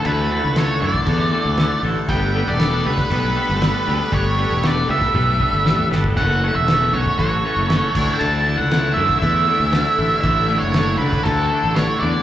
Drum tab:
CC |x---x---x---x---|x---x---x---x---|x---x-----------|x---x---x---x-x-|
SD |----o-------o---|----o--o----o---|----o--o----o-o-|----o-------o---|
T1 |----------------|----------------|--------o-------|----------------|
T2 |----------------|----------------|-------------o--|----------------|
BD |-------oo-------|o------oo-------|o------oo-o----o|o------oo-----o-|

CC |x---x---x---x---|x---x---x---x---|
SD |----o--o----o---|----o--o----o---|
T1 |----------------|----------------|
T2 |----------------|----------------|
BD |-------oo-------|o------oo-------|